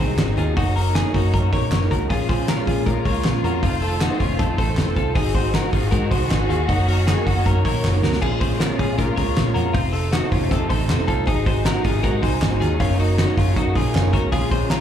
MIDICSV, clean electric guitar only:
0, 0, Header, 1, 2, 480
1, 0, Start_track
1, 0, Key_signature, -5, "minor"
1, 0, Tempo, 382409
1, 710, Time_signature, 4, 2, 24, 8
1, 18583, End_track
2, 0, Start_track
2, 0, Title_t, "Clean electric guitar"
2, 0, Program_c, 0, 27
2, 0, Note_on_c, 0, 72, 78
2, 2, Note_on_c, 0, 68, 64
2, 443, Note_off_c, 0, 72, 0
2, 448, Note_off_c, 0, 68, 0
2, 473, Note_on_c, 0, 68, 76
2, 480, Note_on_c, 0, 65, 58
2, 708, Note_off_c, 0, 68, 0
2, 713, Note_on_c, 0, 66, 103
2, 715, Note_off_c, 0, 65, 0
2, 722, Note_on_c, 0, 63, 78
2, 944, Note_off_c, 0, 66, 0
2, 951, Note_on_c, 0, 70, 83
2, 957, Note_off_c, 0, 63, 0
2, 959, Note_on_c, 0, 66, 51
2, 1185, Note_off_c, 0, 66, 0
2, 1190, Note_on_c, 0, 68, 84
2, 1191, Note_off_c, 0, 70, 0
2, 1202, Note_on_c, 0, 63, 63
2, 1426, Note_off_c, 0, 68, 0
2, 1428, Note_off_c, 0, 63, 0
2, 1431, Note_on_c, 0, 66, 73
2, 1443, Note_on_c, 0, 63, 58
2, 1669, Note_off_c, 0, 66, 0
2, 1678, Note_off_c, 0, 63, 0
2, 1678, Note_on_c, 0, 70, 65
2, 1684, Note_on_c, 0, 66, 55
2, 1910, Note_off_c, 0, 70, 0
2, 1918, Note_on_c, 0, 73, 72
2, 1919, Note_off_c, 0, 66, 0
2, 1925, Note_on_c, 0, 70, 52
2, 2368, Note_off_c, 0, 73, 0
2, 2371, Note_off_c, 0, 70, 0
2, 2396, Note_on_c, 0, 70, 78
2, 2407, Note_on_c, 0, 66, 63
2, 2625, Note_off_c, 0, 70, 0
2, 2630, Note_on_c, 0, 68, 98
2, 2635, Note_off_c, 0, 66, 0
2, 2640, Note_on_c, 0, 65, 84
2, 2863, Note_off_c, 0, 68, 0
2, 2871, Note_on_c, 0, 72, 74
2, 2878, Note_off_c, 0, 65, 0
2, 2878, Note_on_c, 0, 68, 59
2, 3113, Note_off_c, 0, 68, 0
2, 3113, Note_off_c, 0, 72, 0
2, 3118, Note_on_c, 0, 70, 83
2, 3125, Note_on_c, 0, 65, 59
2, 3350, Note_off_c, 0, 65, 0
2, 3350, Note_off_c, 0, 70, 0
2, 3355, Note_on_c, 0, 68, 69
2, 3365, Note_on_c, 0, 65, 54
2, 3587, Note_off_c, 0, 68, 0
2, 3589, Note_off_c, 0, 65, 0
2, 3592, Note_on_c, 0, 70, 88
2, 3604, Note_on_c, 0, 65, 66
2, 3827, Note_off_c, 0, 70, 0
2, 3830, Note_on_c, 0, 73, 83
2, 3840, Note_off_c, 0, 65, 0
2, 3842, Note_on_c, 0, 70, 60
2, 4284, Note_off_c, 0, 73, 0
2, 4291, Note_off_c, 0, 70, 0
2, 4323, Note_on_c, 0, 70, 74
2, 4333, Note_on_c, 0, 66, 63
2, 4556, Note_off_c, 0, 66, 0
2, 4560, Note_off_c, 0, 70, 0
2, 4561, Note_on_c, 0, 65, 95
2, 4568, Note_on_c, 0, 60, 71
2, 4785, Note_off_c, 0, 65, 0
2, 4790, Note_on_c, 0, 69, 79
2, 4800, Note_on_c, 0, 65, 55
2, 4802, Note_off_c, 0, 60, 0
2, 5025, Note_off_c, 0, 65, 0
2, 5030, Note_on_c, 0, 66, 83
2, 5033, Note_off_c, 0, 69, 0
2, 5040, Note_on_c, 0, 63, 64
2, 5264, Note_off_c, 0, 66, 0
2, 5269, Note_on_c, 0, 65, 79
2, 5276, Note_off_c, 0, 63, 0
2, 5281, Note_on_c, 0, 61, 57
2, 5502, Note_off_c, 0, 65, 0
2, 5509, Note_on_c, 0, 69, 72
2, 5517, Note_on_c, 0, 65, 60
2, 5519, Note_off_c, 0, 61, 0
2, 5745, Note_off_c, 0, 69, 0
2, 5752, Note_on_c, 0, 72, 74
2, 5755, Note_off_c, 0, 65, 0
2, 5760, Note_on_c, 0, 69, 67
2, 6206, Note_off_c, 0, 72, 0
2, 6210, Note_off_c, 0, 69, 0
2, 6231, Note_on_c, 0, 69, 79
2, 6241, Note_on_c, 0, 65, 62
2, 6461, Note_off_c, 0, 69, 0
2, 6466, Note_on_c, 0, 68, 107
2, 6470, Note_off_c, 0, 65, 0
2, 6475, Note_on_c, 0, 63, 82
2, 6712, Note_off_c, 0, 68, 0
2, 6715, Note_on_c, 0, 72, 80
2, 6716, Note_off_c, 0, 63, 0
2, 6725, Note_on_c, 0, 68, 67
2, 6951, Note_off_c, 0, 68, 0
2, 6954, Note_on_c, 0, 66, 67
2, 6956, Note_off_c, 0, 72, 0
2, 6956, Note_on_c, 0, 70, 70
2, 7182, Note_off_c, 0, 70, 0
2, 7187, Note_on_c, 0, 68, 78
2, 7192, Note_off_c, 0, 66, 0
2, 7197, Note_on_c, 0, 65, 61
2, 7416, Note_off_c, 0, 68, 0
2, 7421, Note_on_c, 0, 70, 102
2, 7425, Note_off_c, 0, 65, 0
2, 7430, Note_on_c, 0, 66, 74
2, 7667, Note_on_c, 0, 72, 81
2, 7669, Note_off_c, 0, 70, 0
2, 7673, Note_off_c, 0, 66, 0
2, 7680, Note_on_c, 0, 68, 60
2, 8123, Note_off_c, 0, 72, 0
2, 8130, Note_off_c, 0, 68, 0
2, 8149, Note_on_c, 0, 68, 73
2, 8155, Note_on_c, 0, 65, 66
2, 8384, Note_off_c, 0, 68, 0
2, 8389, Note_on_c, 0, 66, 105
2, 8390, Note_off_c, 0, 65, 0
2, 8395, Note_on_c, 0, 63, 82
2, 8632, Note_off_c, 0, 66, 0
2, 8633, Note_on_c, 0, 70, 70
2, 8636, Note_off_c, 0, 63, 0
2, 8647, Note_on_c, 0, 66, 58
2, 8867, Note_off_c, 0, 66, 0
2, 8872, Note_on_c, 0, 68, 80
2, 8875, Note_off_c, 0, 70, 0
2, 8882, Note_on_c, 0, 63, 62
2, 9114, Note_off_c, 0, 68, 0
2, 9119, Note_off_c, 0, 63, 0
2, 9121, Note_on_c, 0, 66, 74
2, 9132, Note_on_c, 0, 63, 54
2, 9358, Note_off_c, 0, 66, 0
2, 9364, Note_off_c, 0, 63, 0
2, 9365, Note_on_c, 0, 70, 78
2, 9376, Note_on_c, 0, 66, 52
2, 9600, Note_off_c, 0, 70, 0
2, 9606, Note_off_c, 0, 66, 0
2, 9606, Note_on_c, 0, 73, 83
2, 9617, Note_on_c, 0, 70, 61
2, 10052, Note_off_c, 0, 73, 0
2, 10058, Note_off_c, 0, 70, 0
2, 10084, Note_on_c, 0, 70, 78
2, 10094, Note_on_c, 0, 66, 64
2, 10307, Note_off_c, 0, 70, 0
2, 10312, Note_on_c, 0, 68, 114
2, 10313, Note_off_c, 0, 66, 0
2, 10318, Note_on_c, 0, 65, 78
2, 10543, Note_off_c, 0, 68, 0
2, 10549, Note_on_c, 0, 72, 73
2, 10556, Note_off_c, 0, 65, 0
2, 10558, Note_on_c, 0, 68, 54
2, 10785, Note_off_c, 0, 68, 0
2, 10790, Note_on_c, 0, 70, 76
2, 10792, Note_off_c, 0, 72, 0
2, 10801, Note_on_c, 0, 65, 64
2, 11028, Note_off_c, 0, 65, 0
2, 11029, Note_off_c, 0, 70, 0
2, 11034, Note_on_c, 0, 68, 79
2, 11043, Note_on_c, 0, 65, 62
2, 11263, Note_off_c, 0, 65, 0
2, 11265, Note_off_c, 0, 68, 0
2, 11270, Note_on_c, 0, 70, 88
2, 11278, Note_on_c, 0, 65, 71
2, 11497, Note_off_c, 0, 70, 0
2, 11502, Note_on_c, 0, 73, 84
2, 11512, Note_on_c, 0, 70, 66
2, 11516, Note_off_c, 0, 65, 0
2, 11958, Note_off_c, 0, 73, 0
2, 11964, Note_off_c, 0, 70, 0
2, 11979, Note_on_c, 0, 70, 85
2, 11988, Note_on_c, 0, 66, 57
2, 12211, Note_off_c, 0, 66, 0
2, 12216, Note_on_c, 0, 65, 104
2, 12223, Note_on_c, 0, 60, 83
2, 12226, Note_off_c, 0, 70, 0
2, 12453, Note_off_c, 0, 65, 0
2, 12459, Note_on_c, 0, 69, 78
2, 12467, Note_off_c, 0, 60, 0
2, 12468, Note_on_c, 0, 65, 61
2, 12703, Note_off_c, 0, 65, 0
2, 12706, Note_off_c, 0, 69, 0
2, 12708, Note_on_c, 0, 66, 91
2, 12716, Note_on_c, 0, 63, 68
2, 12942, Note_off_c, 0, 66, 0
2, 12948, Note_on_c, 0, 65, 77
2, 12952, Note_off_c, 0, 63, 0
2, 12957, Note_on_c, 0, 61, 54
2, 13189, Note_off_c, 0, 65, 0
2, 13194, Note_off_c, 0, 61, 0
2, 13194, Note_on_c, 0, 69, 66
2, 13205, Note_on_c, 0, 65, 53
2, 13419, Note_off_c, 0, 69, 0
2, 13424, Note_on_c, 0, 72, 83
2, 13432, Note_off_c, 0, 65, 0
2, 13437, Note_on_c, 0, 69, 57
2, 13878, Note_off_c, 0, 72, 0
2, 13885, Note_off_c, 0, 69, 0
2, 13901, Note_on_c, 0, 69, 88
2, 13915, Note_on_c, 0, 65, 70
2, 14140, Note_off_c, 0, 69, 0
2, 14145, Note_on_c, 0, 68, 107
2, 14152, Note_off_c, 0, 65, 0
2, 14159, Note_on_c, 0, 63, 90
2, 14382, Note_off_c, 0, 68, 0
2, 14388, Note_on_c, 0, 72, 81
2, 14394, Note_off_c, 0, 63, 0
2, 14397, Note_on_c, 0, 68, 60
2, 14628, Note_off_c, 0, 68, 0
2, 14628, Note_off_c, 0, 72, 0
2, 14633, Note_on_c, 0, 70, 84
2, 14644, Note_on_c, 0, 66, 65
2, 14868, Note_off_c, 0, 70, 0
2, 14873, Note_on_c, 0, 68, 79
2, 14875, Note_off_c, 0, 66, 0
2, 14880, Note_on_c, 0, 65, 62
2, 15099, Note_off_c, 0, 68, 0
2, 15104, Note_on_c, 0, 70, 104
2, 15107, Note_off_c, 0, 65, 0
2, 15112, Note_on_c, 0, 66, 82
2, 15344, Note_on_c, 0, 72, 74
2, 15346, Note_off_c, 0, 70, 0
2, 15350, Note_off_c, 0, 66, 0
2, 15355, Note_on_c, 0, 68, 70
2, 15796, Note_off_c, 0, 72, 0
2, 15802, Note_off_c, 0, 68, 0
2, 15822, Note_on_c, 0, 68, 89
2, 15834, Note_on_c, 0, 65, 60
2, 16050, Note_off_c, 0, 65, 0
2, 16060, Note_off_c, 0, 68, 0
2, 16065, Note_on_c, 0, 65, 106
2, 16075, Note_on_c, 0, 61, 89
2, 16306, Note_off_c, 0, 65, 0
2, 16311, Note_off_c, 0, 61, 0
2, 16314, Note_on_c, 0, 66, 78
2, 16319, Note_on_c, 0, 63, 58
2, 16541, Note_off_c, 0, 66, 0
2, 16549, Note_off_c, 0, 63, 0
2, 16556, Note_on_c, 0, 66, 88
2, 16564, Note_on_c, 0, 63, 65
2, 16785, Note_off_c, 0, 66, 0
2, 16790, Note_on_c, 0, 65, 80
2, 16795, Note_off_c, 0, 63, 0
2, 16804, Note_on_c, 0, 61, 58
2, 17027, Note_off_c, 0, 65, 0
2, 17035, Note_off_c, 0, 61, 0
2, 17035, Note_on_c, 0, 66, 75
2, 17042, Note_on_c, 0, 63, 59
2, 17268, Note_on_c, 0, 68, 79
2, 17270, Note_off_c, 0, 66, 0
2, 17274, Note_off_c, 0, 63, 0
2, 17275, Note_on_c, 0, 65, 59
2, 17718, Note_off_c, 0, 68, 0
2, 17721, Note_off_c, 0, 65, 0
2, 17737, Note_on_c, 0, 70, 81
2, 17752, Note_on_c, 0, 66, 69
2, 17971, Note_off_c, 0, 70, 0
2, 17976, Note_on_c, 0, 68, 108
2, 17980, Note_off_c, 0, 66, 0
2, 17985, Note_on_c, 0, 65, 87
2, 18212, Note_off_c, 0, 68, 0
2, 18217, Note_on_c, 0, 72, 80
2, 18224, Note_off_c, 0, 65, 0
2, 18230, Note_on_c, 0, 68, 59
2, 18450, Note_off_c, 0, 72, 0
2, 18455, Note_on_c, 0, 70, 73
2, 18459, Note_off_c, 0, 68, 0
2, 18464, Note_on_c, 0, 65, 69
2, 18583, Note_off_c, 0, 65, 0
2, 18583, Note_off_c, 0, 70, 0
2, 18583, End_track
0, 0, End_of_file